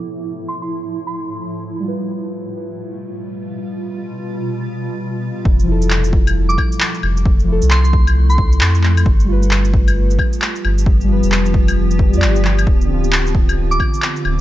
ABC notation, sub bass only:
X:1
M:4/4
L:1/16
Q:"Swing 16ths" 1/4=133
K:Flyd
V:1 name="Sub bass" clef=bass
z16 | z16 | z16 | F,,,8- F,,,2 z4 F,,,2- |
F,,,3 C,,6- C,, C,,2 F,,4 | G,,,8- G,,,2 z4 G,,,2- | G,,,3 F,,,8 G,, G,,,4 | D,,,8- D,,,2 z4 D,,,2 |]